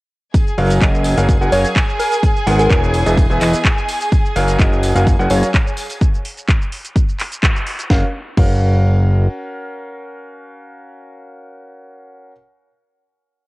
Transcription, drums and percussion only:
0.34 kick loud
0.34 closed hi-hat medium
0.34 tambourine soft
0.34 shaker medium
0.47 shaker soft
0.58 open hi-hat loud
0.58 tambourine medium
0.70 closed hi-hat medium
0.70 tambourine medium
0.70 shaker medium
0.81 kick loud
0.81 clap loud
0.81 closed hi-hat medium
0.81 tambourine soft
0.81 shaker medium
0.95 shaker soft
1.04 open hi-hat loud
1.04 tambourine medium
1.17 closed hi-hat medium
1.17 tambourine soft
1.17 shaker medium
1.29 kick loud
1.29 closed hi-hat medium
1.29 tambourine soft
1.29 shaker medium
1.42 shaker soft
1.52 open hi-hat loud
1.52 tambourine loud
1.64 closed hi-hat medium
1.64 tambourine medium
1.64 shaker medium
1.76 kick loud
1.76 clap loud
1.76 closed hi-hat medium
1.76 tambourine soft
1.76 shaker medium
1.89 shaker soft
2.00 open hi-hat loud
2.00 tambourine medium
2.11 closed hi-hat medium
2.11 tambourine medium
2.11 shaker medium
2.23 kick loud
2.23 closed hi-hat medium
2.23 tambourine soft
2.23 shaker medium
2.36 shaker soft
2.47 open hi-hat loud
2.47 tambourine medium
2.59 closed hi-hat medium
2.59 tambourine medium
2.59 shaker medium
2.70 kick loud
2.70 clap loud
2.70 closed hi-hat medium
2.70 tambourine soft
2.70 shaker medium
2.84 shaker soft
2.94 open hi-hat loud
2.94 tambourine medium
3.06 closed hi-hat medium
3.06 tambourine medium
3.06 shaker medium
3.18 kick loud
3.18 closed hi-hat medium
3.18 tambourine soft
3.18 shaker medium
3.31 shaker soft
3.41 clap medium
3.41 open hi-hat loud
3.41 tambourine loud
3.53 closed hi-hat medium
3.53 tambourine medium
3.53 shaker medium
3.65 kick loud
3.65 clap loud
3.65 closed hi-hat medium
3.65 shaker medium
3.78 shaker soft
3.89 open hi-hat loud
3.89 tambourine loud
4.00 closed hi-hat medium
4.00 tambourine medium
4.00 shaker medium
4.12 kick loud
4.12 closed hi-hat medium
4.12 tambourine soft
4.12 shaker medium
4.25 shaker soft
4.36 open hi-hat loud
4.36 tambourine medium
4.48 closed hi-hat medium
4.48 tambourine medium
4.48 shaker medium
4.59 kick loud
4.59 clap loud
4.59 closed hi-hat medium
4.59 tambourine soft
4.59 shaker medium
4.73 shaker soft
4.83 open hi-hat loud
4.83 tambourine loud
4.95 closed hi-hat medium
4.95 tambourine medium
4.95 shaker medium
5.07 kick loud
5.07 closed hi-hat medium
5.07 tambourine soft
5.07 shaker medium
5.20 shaker soft
5.30 open hi-hat loud
5.30 tambourine loud
5.43 closed hi-hat medium
5.43 tambourine medium
5.43 shaker medium
5.54 kick loud
5.54 clap loud
5.54 closed hi-hat soft
5.54 tambourine soft
5.54 shaker medium
5.67 shaker soft
5.77 open hi-hat loud
5.77 tambourine loud
5.90 closed hi-hat medium
5.90 tambourine medium
5.90 shaker medium
6.01 kick loud
6.01 closed hi-hat soft
6.01 shaker medium
6.14 shaker soft
6.25 open hi-hat loud
6.37 closed hi-hat medium
6.37 shaker medium
6.48 kick loud
6.48 clap loud
6.48 closed hi-hat medium
6.48 shaker medium
6.62 shaker soft
6.72 open hi-hat loud
6.85 closed hi-hat medium
6.85 shaker medium
6.96 kick loud
6.96 closed hi-hat medium
6.96 shaker medium
7.09 shaker soft
7.19 clap medium
7.19 open hi-hat loud
7.32 closed hi-hat medium
7.32 shaker medium
7.43 kick loud
7.43 clap loud
7.43 closed hi-hat soft
7.43 shaker medium
7.56 shaker soft
7.67 open hi-hat loud
7.79 closed hi-hat medium
7.79 shaker medium
7.90 kick loud
7.90 snare medium
8.37 kick loud
8.37 crash medium

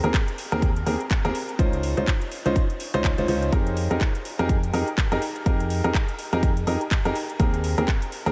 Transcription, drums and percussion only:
0.04 closed hi-hat soft
0.14 kick loud
0.14 clap loud
0.14 closed hi-hat medium
0.28 closed hi-hat soft
0.38 open hi-hat loud
0.52 closed hi-hat soft
0.62 kick loud
0.62 closed hi-hat medium
0.76 closed hi-hat soft
0.86 open hi-hat loud
1.01 closed hi-hat soft
1.11 kick loud
1.11 clap loud
1.11 closed hi-hat medium
1.25 closed hi-hat soft
1.35 open hi-hat loud
1.49 closed hi-hat soft
1.59 kick loud
1.59 closed hi-hat medium
1.73 closed hi-hat soft
1.83 open hi-hat loud
1.97 closed hi-hat soft
2.07 kick loud
2.07 clap loud
2.07 closed hi-hat medium
2.21 closed hi-hat soft
2.32 open hi-hat medium
2.46 closed hi-hat soft
2.56 kick loud
2.56 closed hi-hat medium
2.70 closed hi-hat soft
2.80 open hi-hat loud
2.94 closed hi-hat soft
3.04 kick loud
3.04 clap loud
3.04 closed hi-hat medium
3.18 closed hi-hat soft
3.28 open hi-hat loud
3.42 closed hi-hat soft
3.53 kick loud
3.53 closed hi-hat medium
3.67 closed hi-hat soft
3.77 open hi-hat loud
3.91 closed hi-hat soft
4.01 kick loud
4.01 clap loud
4.01 closed hi-hat medium
4.15 closed hi-hat soft
4.25 open hi-hat loud
4.39 closed hi-hat soft
4.49 kick loud
4.49 closed hi-hat medium
4.63 closed hi-hat soft
4.74 open hi-hat loud
4.88 closed hi-hat soft
4.98 kick loud
4.98 clap loud
4.98 closed hi-hat medium
5.12 closed hi-hat soft
5.22 open hi-hat medium
5.36 closed hi-hat soft
5.46 kick loud
5.46 closed hi-hat medium
5.60 closed hi-hat soft
5.70 open hi-hat loud
5.84 closed hi-hat soft
5.94 kick loud
5.94 clap loud
5.94 closed hi-hat medium
6.09 closed hi-hat soft
6.19 open hi-hat medium
6.33 closed hi-hat soft
6.43 kick loud
6.43 closed hi-hat medium
6.57 closed hi-hat soft
6.67 open hi-hat loud
6.81 closed hi-hat soft
6.91 kick loud
6.91 clap loud
6.91 closed hi-hat medium
7.05 closed hi-hat soft
7.15 open hi-hat medium
7.30 closed hi-hat soft
7.40 kick loud
7.40 closed hi-hat medium
7.54 closed hi-hat soft
7.64 open hi-hat loud
7.78 closed hi-hat soft
7.88 kick loud
7.88 clap loud
7.88 closed hi-hat medium
8.02 closed hi-hat soft
8.12 open hi-hat medium
8.26 closed hi-hat soft

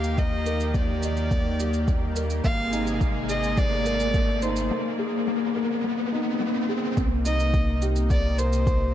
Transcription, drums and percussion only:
0.04 shaker soft
0.18 kick medium
0.18 shaker soft
0.46 shaker medium
0.60 shaker soft
0.74 kick medium
0.74 shaker soft
1.03 shaker medium
1.17 shaker soft
1.31 kick loud
1.31 shaker soft
1.60 shaker medium
1.73 shaker soft
1.88 kick medium
1.88 shaker soft
2.16 shaker medium
2.30 shaker soft
2.44 kick loud
2.44 shaker soft
2.73 shaker medium
2.87 shaker soft
3.01 kick medium
3.01 shaker soft
3.29 shaker medium
3.43 shaker soft
3.57 kick loud
3.57 shaker soft
3.86 shaker medium
4.00 shaker soft
4.14 kick loud
4.14 shaker soft
4.42 shaker medium
4.56 shaker soft
6.97 kick loud
6.97 shaker soft
7.25 shaker medium
7.40 shaker soft
7.54 kick loud
7.54 shaker soft
7.82 shaker medium
7.96 shaker soft
8.10 kick loud
8.10 shaker soft
8.39 shaker medium
8.53 shaker soft
8.67 kick loud
8.67 shaker soft

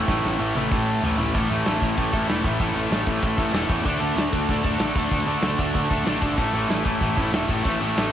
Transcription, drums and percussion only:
0.08 kick loud
0.08 snare medium
0.26 snare medium
0.55 high tom medium
0.71 kick medium
0.71 mid tom medium
1.03 floor tom medium
1.20 floor tom medium
1.35 kick loud
1.35 open hi-hat medium
1.51 open hi-hat medium
1.65 snare loud
1.65 open hi-hat medium
1.82 kick medium
1.82 open hi-hat medium
1.98 kick medium
1.98 open hi-hat medium
2.13 kick medium
2.13 open hi-hat medium
2.29 snare loud
2.29 open hi-hat medium
2.44 kick medium
2.44 open hi-hat medium
2.60 kick medium
2.60 open hi-hat medium
2.76 open hi-hat medium
2.91 snare loud
2.91 open hi-hat medium
3.07 kick medium
3.07 open hi-hat medium
3.23 kick medium
3.23 open hi-hat medium
3.38 kick medium
3.38 open hi-hat medium
3.54 snare loud
3.54 open hi-hat medium
3.70 kick medium
3.70 open hi-hat medium
3.86 kick loud
3.86 open hi-hat medium
4.01 open hi-hat medium
4.18 snare loud
4.18 open hi-hat medium
4.33 kick medium
4.33 open hi-hat medium
4.49 kick medium
4.49 open hi-hat medium
4.65 kick medium
4.65 open hi-hat medium
4.79 snare loud
4.79 open hi-hat medium
4.95 kick loud
4.95 open hi-hat medium
5.11 kick medium
5.11 open hi-hat medium
5.27 open hi-hat medium
5.42 snare loud
5.42 open hi-hat medium
5.58 kick medium
5.58 open hi-hat medium
5.75 kick medium
5.75 open hi-hat medium
5.90 kick medium
5.90 open hi-hat medium
6.06 snare loud
6.06 open hi-hat medium
6.22 kick medium
6.22 open hi-hat medium
6.38 kick medium
6.38 open hi-hat medium
6.54 open hi-hat medium
6.69 snare medium
6.69 open hi-hat medium
6.85 kick medium
6.85 open hi-hat medium
7.00 kick medium
7.00 open hi-hat medium
7.17 kick medium
7.17 open hi-hat medium
7.33 snare loud
7.33 open hi-hat medium
7.49 kick medium
7.49 open hi-hat medium
7.65 kick medium
7.65 open hi-hat medium
7.81 open hi-hat medium
7.97 snare loud
7.97 open hi-hat medium

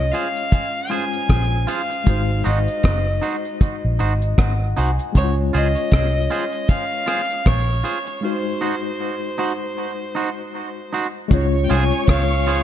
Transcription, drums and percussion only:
0.14 closed hi-hat medium
0.36 closed hi-hat soft
0.52 kick loud
0.52 closed hi-hat medium
0.90 closed hi-hat medium
1.13 closed hi-hat soft
1.29 kick loud
1.29 cross-stick medium
1.29 closed hi-hat medium
1.68 closed hi-hat medium
1.91 closed hi-hat soft
2.07 kick loud
2.07 closed hi-hat medium
2.46 closed hi-hat medium
2.68 closed hi-hat soft
2.83 kick loud
2.83 cross-stick loud
2.83 closed hi-hat medium
3.23 closed hi-hat medium
3.45 closed hi-hat soft
3.61 kick loud
3.61 closed hi-hat medium
3.99 closed hi-hat medium
4.22 closed hi-hat soft
4.38 kick loud
4.38 cross-stick loud
4.38 closed hi-hat medium
4.77 closed hi-hat medium
4.99 closed hi-hat medium
5.15 kick loud
5.15 closed hi-hat medium
5.55 closed hi-hat medium
5.76 closed hi-hat medium
5.92 kick loud
5.92 cross-stick loud
5.92 closed hi-hat medium
6.31 closed hi-hat medium
6.53 closed hi-hat soft
6.69 kick loud
6.69 closed hi-hat medium
7.07 cross-stick medium
7.07 closed hi-hat medium
7.30 closed hi-hat soft
7.46 kick loud
7.46 cross-stick medium
7.46 closed hi-hat medium
7.85 closed hi-hat medium
8.07 closed hi-hat medium
11.31 kick loud
11.31 closed hi-hat medium
11.70 closed hi-hat medium
11.92 closed hi-hat soft
12.07 kick loud
12.07 cross-stick loud
12.07 closed hi-hat medium
12.46 closed hi-hat medium

